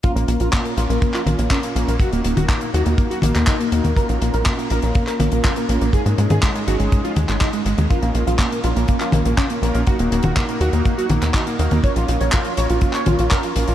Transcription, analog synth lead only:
\new Staff \with { instrumentName = "Analog synth lead" } { \time 4/4 \key bes \minor \tempo 4 = 122 f'16 bes16 bes16 f'16 bes16 bes16 f'16 bes16 bes16 f'16 bes16 bes16 des'16 bes16 bes16 bes16 | ges'16 bes16 bes16 ges'16 bes16 bes16 ges'16 bes16 bes16 ges'16 bes16 bes16 ees'16 bes16 bes16 bes16 | bes'16 bes16 bes16 bes'16 bes16 bes16 bes'16 bes16 bes16 bes'16 bes16 bes16 f'16 bes16 bes16 bes16 | aes'16 aes16 aes16 aes'16 aes16 aes16 ges'16 aes16 aes16 f'16 aes16 aes16 ees'16 aes16 aes16 aes16 |
f'16 bes16 bes16 f'16 bes16 bes16 f'16 bes16 bes16 f'16 bes16 bes16 des'16 bes16 bes16 bes16 | ges'16 bes16 bes16 ges'16 bes16 bes16 ges'16 bes16 bes16 ges'16 bes16 bes16 ees'16 bes16 bes16 bes16 | des''16 f'16 f'16 des''16 f'16 f'16 des''16 f'16 f'16 des''16 f'16 f'16 bes'16 f'16 f'16 f'16 | }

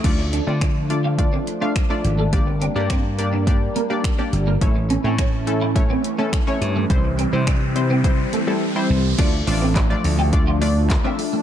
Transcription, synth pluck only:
\new Staff \with { instrumentName = "Synth pluck" } { \time 4/4 \key d \minor \tempo 4 = 105 <a d' f' d''>8 r16 <a d' f' d''>8 r16 <a d' f' d''>16 r16 <a d' f' d''>8 r16 <a d' f' f''>16 r16 <a d' f' d''>8 r16 | <bes d' g' d''>8 r16 <bes d' g' d''>8 r16 <bes d' g' d''>16 r16 <bes d' g' d''>8 r16 <bes d' g' d''>16 r16 <bes d' g' d''>8 r16 | <a cis' e' cis''>8 r16 <a cis' e' cis''>8 r16 <a cis' e' a'>16 r16 <a cis' e' cis''>8 r16 <a cis' e' a'>16 r16 <a cis' e' cis''>8 r16 | <g c' e' c''>8 r16 <g c' e' c''>8 r16 <g c' e' c''>16 r16 <g c' e' c''>8 r16 <g c' e' a'>16 r16 <g c' e' c''>8 r16 |
<a d' f' d''>16 r16 <a d' f' d''>8 r16 <a d' f' d''>8 r16 <a d' f' d''>16 r16 <a d' f' d''>8 r16 <a d' f' e''>8 r16 | }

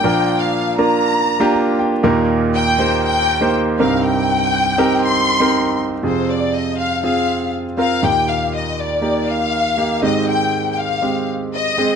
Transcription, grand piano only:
<<
  \new Staff \with { instrumentName = "Grand piano" } { \time 4/4 \key f \dorian \tempo 4 = 120 << { r2. bes''8 g''8 | r1 | r1 | r1 |
r1 | r1 | } \\ { <bes d' f' bes'>4~ <bes d' f' bes'>16 r16 <bes d' f' bes'>4 r16 <bes d' f' g'>4 r16 | <bes ees' g' bes'>4~ <bes ees' g' bes'>16 r16 <bes ees' g' c''>4 r16 <bes ees' g' c''>8. <c' ees' g' bes'>8~ | <c' ees' g' bes'>4~ <c' ees' g' bes'>16 r16 <c' ees' g' bes'>4 r16 <c' ees' g' bes'>4 r16 | <c' f' aes'>4.~ <c' f' aes'>16 r16 <c' f' aes'>4~ <c' f' aes'>16 r16 <c' f' bes'>8 |
<bes ees' g'>4.~ <bes ees' g'>16 r16 <bes ees' g'>4~ <bes ees' g'>16 r16 <bes ees' g'>8 | <aes c' g'>4.~ <aes c' g'>16 r16 <aes c' g'>4~ <aes c' g'>16 r16 <aes c' aes'>8 | } >> }
  \new Staff \with { instrumentName = "Grand piano" } { \clef bass \time 4/4 \key f \dorian <bes, f>1 | <ees, bes,>2.~ <ees, bes,>8 <c, g,>8~ | <c, g,>2.~ <c, g,>8 r8 | <f, c>1 |
<ees, bes,>1 | <aes, ees>1 | }
>>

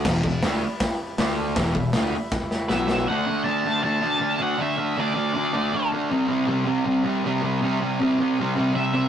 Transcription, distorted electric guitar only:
\new Staff \with { instrumentName = "Distorted electric guitar" } { \clef bass \time 4/4 \key d \mixolydian \tempo 4 = 159 <e, b, e>8 <e, b,>8 <d a d'>8 r4. <d a d'>4 | <e, b, e>8 <e, b,>8 <d a d'>8 r4. <b, fis b>4 | <d a d'>8 <a d'>8 <d a d'>8 <d a d'>8 <d a d'>8 <d a d'>8 <d a d'>8 <a d'>8 | <d a d'>8 <a d'>8 <d a d'>8 <d a d'>8 <d a d'>8 <d a d'>8 <d a d'>8 <a d'>8 |
<c g c'>8 <g c'>8 <c g c'>8 <c g c'>8 <c g c'>8 <c g c'>8 <c g c'>8 <g c'>8 | <c g c'>8 <g c'>8 <c g c'>8 <c g c'>8 <c g c'>8 <c g c'>8 <c g c'>8 <g c'>8 | }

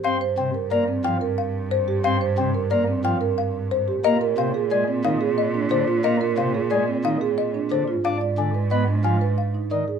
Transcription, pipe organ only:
\new Staff \with { instrumentName = "Pipe organ" } { \clef bass \time 6/4 \key g \phrygian \tempo 4 = 180 c'8 r8 c8 r8 bes8 r8 f8 r2 r8 | c'8 r8 c8 r8 bes8 r8 f8 r2 r8 | bes8 r8 c8 r8 aes8 r8 ees8 r4. d8 r8 | bes8 r8 c8 r8 aes8 r8 ees8 r4. d8 r8 |
d'8 r8 d8 r8 ces'8 r8 f8 r4. ees8 r8 | }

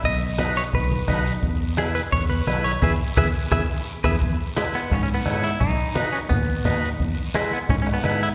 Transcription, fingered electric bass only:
\new Staff \with { instrumentName = "Fingered electric bass" } { \clef bass \time 4/4 \key e \major \tempo 4 = 172 b,,2 b,,4 b,,4 | e,2 e,4 b,,4 | e,8 r8 e,8 r8 e,8 r4 e,8 | e,8 r4. gis,4 gis,4 |
b,,8 r4. dis,4 dis,4 | e,8 r4. gis,4 gis,4 | }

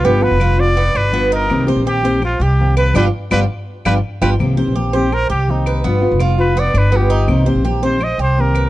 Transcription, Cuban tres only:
\new Staff \with { instrumentName = "Cuban tres" } { \time 4/4 \key c \minor \tempo 4 = 166 b4 f'4 b8 d'8 b8 ees'8~ | ees'8 c''8 g'8 c''4 g'4 b'8 | <d' f' g'>8 r8 <d' f' g'>8 r4 <d' f' g'>8 r8 <d' f' g'>8 | r8 c''8 g'8 c''4 g'4 b'8 |
b4 f'4 b8 d'8 b8 ees'8~ | ees'8 c''8 g'8 c''4 g'4 b'8 | }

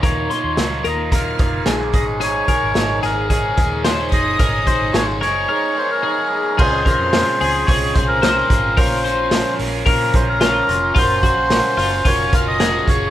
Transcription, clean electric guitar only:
\new Staff \with { instrumentName = "Clean electric guitar" } { \time 4/4 \key des \major \tempo 4 = 110 bes'8 c'''4 bes'8 bes'4 aes'4 | aes'8 bes'4 aes'8 aes'4 c''4 | bes'8 c''4 bes'8 bes'4 aes'4 | aes'8 bes'4 aes'8 aes'4 c''4 |
bes'8 c''4 bes'8 bes'4 f'4 | f'8 ges'4 f'8 f'4 aes'4 | }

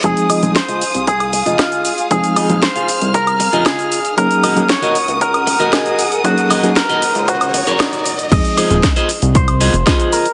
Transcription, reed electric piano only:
\new Staff \with { instrumentName = "Reed electric piano" } { \time 4/4 \key f \phrygian \tempo 4 = 116 <f aes c' ees' aes'>8. <f aes c' ees' aes'>16 r2. | <f aes c' ees' aes'>8. <f aes c' ees' aes'>16 r2. | <ges bes des' ees' aes'>8. <ges bes des' ees' aes'>16 r2. | <ges bes des' ees' aes'>8. <ges bes des' ees' aes'>16 r2. |
<f aes c' ees' aes'>8. <f aes c' ees' aes'>16 r2. | }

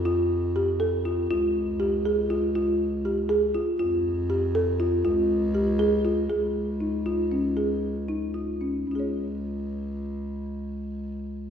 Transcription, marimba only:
\new Staff \with { instrumentName = "Marimba" } { \time 5/8 \key des \lydian \tempo 4 = 120 f'4 g'8 a'8 f'8 | f'4 g'8 aes'8 f'8 | f'4 g'8 aes'8 f'8 | f'4 g'8 a'8 f'8 |
f'4 g'8 aes'8 f'8 | aes'4 ees'8 f'8 des'8 | aes'4 ees'8 f'8 des'8 | <des' f' aes' des''>2~ <des' f' aes' des''>8~ |
<des' f' aes' des''>2~ <des' f' aes' des''>8 | }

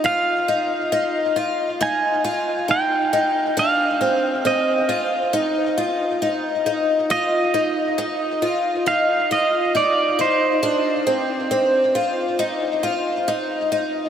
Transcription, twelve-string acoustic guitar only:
\new Staff \with { instrumentName = "Twelve-string acoustic guitar" } { \time 4/4 \key ees \major \tempo 4 = 68 f'8 ees'8 ees'8 f'8 ees'8 f'8 ees'8 ees'8 | d'8 c'8 c'8 f'8 ees'8 f'8 ees'8 ees'8 | f'8 ees'8 ees'8 f'8 ees'8 f'8 ees'8 ees'8 | d'8 c'8 c'8 f'8 ees'8 f'8 ees'8 ees'8 | }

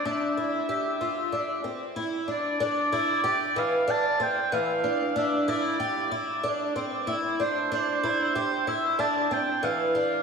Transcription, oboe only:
\new Staff \with { instrumentName = "Oboe" } { \time 4/4 \key e \phrygian \tempo 4 = 94 e''2. r8 d''8 | d''4. f''8 a''8 g''8 f''4 | e''8 d''4. r4. c''8 | c''4. e''8 a''8 g''8 f''4 | }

